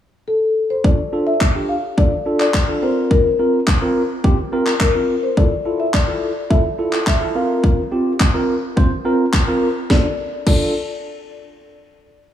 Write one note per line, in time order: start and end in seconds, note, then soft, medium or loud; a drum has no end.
0.28 0.71 A4 medium
0.70 0.77 C5 medium
0.84 0.97 D4 medium
0.84 0.97 F4 medium
0.84 0.98 A4 medium
0.84 1.28 D5 medium
0.84 kick loud
1.12 1.32 D4 medium
1.12 1.32 F4 medium
1.12 1.32 A4 medium
1.27 1.66 E5 loud
1.41 kick loud
1.41 clap medium
1.55 1.75 D4 medium
1.55 1.75 F4 medium
1.55 1.75 G4 medium
1.69 1.98 F5 loud
1.97 2.11 D4 medium
1.97 2.11 F4 medium
1.97 2.11 A4 medium
1.97 2.37 D5 loud
1.97 kick loud
2.26 2.46 D4 medium
2.26 2.46 F4 medium
2.26 2.46 A4 medium
2.40 2.84 D5 medium
2.40 clap medium
2.54 kick loud
2.54 clap loud
2.68 2.82 D4 medium
2.68 2.81 F4 medium
2.68 2.83 A4 medium
2.82 3.28 C4 medium
2.82 3.28 F4 medium
2.82 3.28 A#4 medium
2.82 3.12 C5 medium
3.11 4.77 A#4 medium
3.11 kick loud
3.39 3.59 C4 medium
3.39 3.59 F4 medium
3.39 3.59 A#4 medium
3.67 kick loud
3.67 clap loud
3.81 4.01 C4 medium
3.81 4.01 F4 medium
3.81 4.01 A#4 loud
4.24 4.37 C4 medium
4.24 4.37 F4 medium
4.24 4.37 G4 loud
4.24 kick loud
4.52 4.72 C4 medium
4.52 4.72 F4 medium
4.52 4.72 A#4 loud
4.66 clap medium
4.80 5.24 A#4 medium
4.80 kick loud
4.80 clap loud
4.95 5.14 C4 medium
4.95 5.15 F4 medium
4.95 5.15 A#4 medium
5.23 5.29 C5 medium
5.37 5.50 E4 medium
5.37 5.50 F4 medium
5.37 5.50 A4 medium
5.37 5.81 D5 medium
5.37 kick loud
5.65 5.85 E4 medium
5.65 5.85 F4 medium
5.65 5.85 A4 medium
5.80 5.94 E5 medium
5.94 6.52 D5 medium
5.94 kick loud
5.94 clap loud
6.08 6.28 E4 medium
6.08 6.28 F4 medium
6.08 6.28 A4 medium
6.50 6.63 E4 medium
6.50 6.63 F4 medium
6.50 6.64 A4 medium
6.50 7.06 E5 loud
6.50 kick loud
6.78 6.98 E4 medium
6.78 6.98 F4 medium
6.78 6.99 A4 medium
6.93 clap medium
7.07 7.36 E5 medium
7.07 kick loud
7.07 clap loud
7.21 7.35 E4 medium
7.21 7.34 F4 medium
7.21 7.35 A4 medium
7.35 7.80 C4 medium
7.35 7.81 F4 medium
7.35 7.81 A#4 medium
7.35 9.29 F5 medium
7.64 kick loud
7.91 8.11 C4 medium
7.91 8.12 F4 medium
7.91 8.12 G4 medium
8.20 kick loud
8.20 clap medium
8.34 8.54 C4 medium
8.34 8.54 F4 medium
8.34 8.54 A#4 loud
8.76 8.90 C4 medium
8.76 8.90 F4 medium
8.76 8.90 C5 loud
8.76 kick loud
9.05 9.25 C4 medium
9.05 9.25 F4 medium
9.05 9.25 A#4 medium
9.33 kick loud
9.33 clap loud
9.47 9.67 C4 medium
9.47 9.67 F4 medium
9.47 9.67 A#4 loud
9.90 10.06 D4 medium
9.90 10.06 F4 medium
9.90 10.06 A4 medium
9.90 10.06 D5 medium
9.90 kick loud
9.90 snare medium
10.46 10.73 D4 medium
10.46 10.73 F4 medium
10.46 10.73 A4 medium
10.46 10.73 D5 medium
10.46 kick loud
10.46 crash medium